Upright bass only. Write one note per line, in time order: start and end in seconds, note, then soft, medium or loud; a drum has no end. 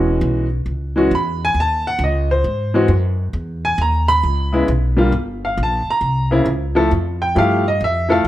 0.00 0.20 E1 medium
0.21 0.65 B1 loud
0.66 1.09 C#2 medium
1.11 1.54 E2 loud
1.54 1.98 D#2 medium
1.99 2.43 C#2 loud
2.44 2.88 G#2 medium
2.88 3.32 F#2 loud
3.33 3.77 E2 medium
3.78 4.22 D#2 loud
4.23 4.67 C#2 medium
4.68 5.12 B1 loud
5.12 5.56 G1 medium
5.57 5.85 A#1 medium
5.87 muted upright bass stroke soft
6.01 6.45 C2 medium
6.46 6.90 C#2 medium
6.91 7.35 F2 medium
7.36 7.80 G2 loud
7.81 8.24 F2 medium
8.25 8.28 E2 medium